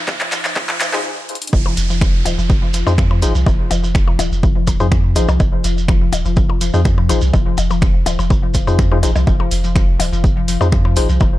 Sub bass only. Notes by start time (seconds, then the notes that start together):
0.32 D#1
0.45 F1
0.93 F2
1.53 F1
1.77 F1
2.26 D#1
2.38 F1
2.87 F2
3.22 G#1
3.35 C2
3.46 F1
3.71 F1
4.19 D#1
4.32 F1
4.80 F2
5.16 G#1
5.29 C2
5.40 F1
5.64 F1
6.13 D#1
6.25 F1
6.74 F2
7.09 G#1
7.22 C2
7.34 F1
7.58 F1
8.06 D#1
8.19 F1
8.67 F2
9.03 G#1
9.16 C2
9.27 F1
9.51 F1
10.00 D#1
10.12 F1
10.61 F2
10.96 G#1
11.09 C2
11.21 F1